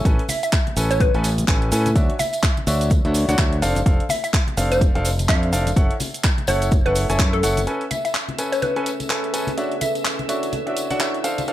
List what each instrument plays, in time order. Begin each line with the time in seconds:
0.05 fingered electric bass A1, grand piano C#4 A4 B4 G#5, kick, closed hi-hat, tambourine, shaker
0.19 closed hi-hat
0.29 synth pluck E5, open hi-hat, tambourine, high conga, shaker
0.43 synth pluck E5, closed hi-hat, tambourine, shaker
0.53 kick, clap, closed hi-hat, tambourine, shaker
0.67 closed hi-hat, high conga
0.77 fingered electric bass A1, grand piano C#4 A4 B4 G#5, open hi-hat, tambourine, shaker
0.91 synth pluck C#5, closed hi-hat, tambourine, shaker
1.00 synth pluck B4, kick, closed hi-hat, tambourine, high conga, shaker
1.14 fingered electric bass A1, grand piano C#4 A4 B4 G#5, closed hi-hat
1.24 open hi-hat, tambourine, shaker
1.38 closed hi-hat, tambourine, high conga, shaker
1.48 fingered electric bass A1, grand piano C#4 A4 B4 G#5, kick, clap, closed hi-hat, tambourine, shaker
1.62 closed hi-hat
1.72 fingered electric bass A2, grand piano C#4 A4 B4 G#5, open hi-hat, tambourine, shaker
1.86 closed hi-hat, tambourine, high conga, shaker
1.96 fingered electric bass D2, grand piano D4 F#4 C#5 E5, kick, closed hi-hat, tambourine, shaker
2.10 closed hi-hat
2.19 synth pluck E5, open hi-hat, tambourine, high conga, shaker
2.33 closed hi-hat, tambourine, shaker
2.43 kick, clap, closed hi-hat, shaker
2.57 closed hi-hat, high conga
2.67 fingered electric bass D2, grand piano D4 F#4 C#5 E5, open hi-hat, tambourine, shaker
2.81 closed hi-hat, tambourine, shaker
2.90 kick, closed hi-hat, tambourine, high conga, shaker
3.05 fingered electric bass D2, grand piano D4 F#4 C#5 E5, closed hi-hat
3.14 open hi-hat, tambourine, shaker
3.28 fingered electric bass D2, grand piano D4 F#4 C#5 F#5, closed hi-hat, tambourine, high conga, shaker
3.38 grand piano E5, kick, clap, closed hi-hat, shaker
3.53 closed hi-hat
3.62 fingered electric bass F1, grand piano D4 A4 C5 F5, open hi-hat, tambourine, shaker
3.75 closed hi-hat, tambourine, high conga, shaker
3.86 fingered electric bass F1, grand piano D4 A4 C5 F5, kick, closed hi-hat, tambourine, shaker
4.00 closed hi-hat
4.09 synth pluck E5, open hi-hat, tambourine, high conga, shaker
4.24 synth pluck E5, closed hi-hat, tambourine, shaker
4.34 kick, clap, closed hi-hat, shaker
4.47 closed hi-hat, high conga
4.57 fingered electric bass F1, grand piano D4 A4 C5 F5, open hi-hat, tambourine, shaker
4.71 synth pluck C5, closed hi-hat, tambourine, shaker
4.81 kick, closed hi-hat, tambourine, high conga, shaker
4.95 fingered electric bass F1, grand piano D4 A4 C5 F5, closed hi-hat
5.05 open hi-hat, tambourine, shaker
5.19 closed hi-hat, tambourine, high conga, shaker
5.29 fingered electric bass F2, grand piano D4 A4 C5 F5, synth pluck E5, kick, clap, closed hi-hat, shaker
5.43 closed hi-hat
5.53 fingered electric bass F1, grand piano D4 A4 C5 F5, open hi-hat, tambourine, shaker
5.67 closed hi-hat, tambourine, high conga, shaker
5.76 fingered electric bass F#1, grand piano E4 A4 C#5 F#5, kick, closed hi-hat, tambourine, shaker
5.91 closed hi-hat
6.00 open hi-hat, tambourine, high conga, shaker
6.14 closed hi-hat, tambourine, shaker
6.24 kick, clap, closed hi-hat, tambourine, shaker
6.38 closed hi-hat, high conga
6.47 fingered electric bass F#1, grand piano E4 A4 C#5 F#5, synth pluck C#5, open hi-hat, tambourine, shaker
6.62 closed hi-hat, tambourine, shaker
6.71 kick, closed hi-hat, tambourine, high conga, shaker
6.86 fingered electric bass F#1, grand piano E4 A4 C#5 F#5, synth pluck B4, closed hi-hat
6.95 open hi-hat, tambourine, shaker
7.10 fingered electric bass F#1, grand piano E4 A4 C#5 G#5, closed hi-hat, tambourine, high conga, shaker
7.19 fingered electric bass F#2, grand piano E4 C#5, kick, clap, closed hi-hat, shaker
7.33 synth pluck A4, closed hi-hat
7.43 fingered electric bass F#1, grand piano E4 A4 C#5 F#5, open hi-hat, tambourine, shaker
7.57 closed hi-hat, tambourine, high conga, shaker
7.67 grand piano C#4 A4 B4 G#5, ambient pad C#4, violin section E5 E6, closed hi-hat, tambourine
7.81 closed hi-hat
7.89 ambient pad A4 G#5, synth pluck E5, closed hi-hat, tambourine, high conga
8.05 synth pluck E5, closed hi-hat, tambourine
8.15 clap, closed hi-hat, tambourine
8.28 ambient pad B4, closed hi-hat, high conga
8.38 grand piano C#4 A4 B4 G#5, closed hi-hat, tambourine
8.52 synth pluck C#5, closed hi-hat, tambourine
8.62 synth pluck B4, closed hi-hat, tambourine, high conga
8.76 grand piano C#4 A4 B4 G#5, closed hi-hat
8.86 closed hi-hat, tambourine
9.00 closed hi-hat, tambourine, high conga
9.10 grand piano C#4 A4 B4 G#5, clap, closed hi-hat, tambourine
9.24 closed hi-hat
9.34 grand piano C#4 A4 B4 G#5, closed hi-hat, tambourine
9.47 closed hi-hat, tambourine, high conga
9.57 grand piano D4 F#4 C#5 E5, ambient pad E4, closed hi-hat, tambourine
9.72 closed hi-hat
9.81 synth pluck E5, closed hi-hat, tambourine, high conga
9.90 ambient pad D5
9.95 closed hi-hat, tambourine
10.05 clap, closed hi-hat, tambourine
10.19 closed hi-hat, high conga
10.29 grand piano D4 F#4 C#5 E5, closed hi-hat, tambourine
10.43 closed hi-hat, tambourine
10.53 closed hi-hat, tambourine, high conga
10.67 grand piano D4 F#4 C#5 E5, closed hi-hat
10.77 closed hi-hat, tambourine
10.90 grand piano D4 F#4 C#5 F#5, closed hi-hat, tambourine, high conga
11.00 grand piano D4 F#4 C#5 E5, clap, closed hi-hat, tambourine
11.14 closed hi-hat
11.24 grand piano D4 A4 C5 F5, ambient pad F4, closed hi-hat, tambourine
11.38 closed hi-hat, tambourine, high conga
11.48 grand piano D4 A4 C5 F5, closed hi-hat, tambourine